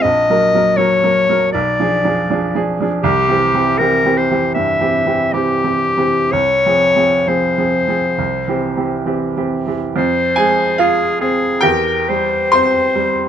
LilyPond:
<<
  \new Staff \with { instrumentName = "Clarinet" } { \time 4/4 \key c \phrygian \tempo 4 = 72 ees''4 des''4 d''4. r8 | g'4 bes'8 c''8 e''4 g'4 | des''4 c''2 r4 | c''4 aes'8 aes'8 bes'8 c''4. | }
  \new Staff \with { instrumentName = "Grand piano" } { \time 4/4 \key c \phrygian << { r1 | r1 | r1 | r8 <aes' aes''>8 <f' f''>4 <g' g''>4 <c'' c'''>4 | } \\ { \tuplet 3/2 { bes,,8 <ges bes bes'>8 <ges bes bes'>8 <ges bes bes'>8 <ges bes bes'>8 <ges bes bes'>8 b,,8 <f d' gis'>8 <f d' gis'>8 <f d' gis'>8 <f d' gis'>8 <f d' gis'>8 } | \tuplet 3/2 { c,8 <e c' g'>8 <e c' g'>8 <e c' g'>8 <e c' g'>8 <e c' g'>8 g,8 <e c' g'>8 <e c' g'>8 <e c' g'>8 <e c' g'>8 <e c' g'>8 } | \tuplet 3/2 { c,8 <f c' aes'>8 <f c' aes'>8 <f c' aes'>8 <f c' aes'>8 <f c' aes'>8 c,8 <e c' g'>8 <e c' g'>8 <e c' g'>8 <e c' g'>8 <e c' g'>8 } | f,8 aes4 c'8 e,8 g8 c'8 g8 | } >> }
>>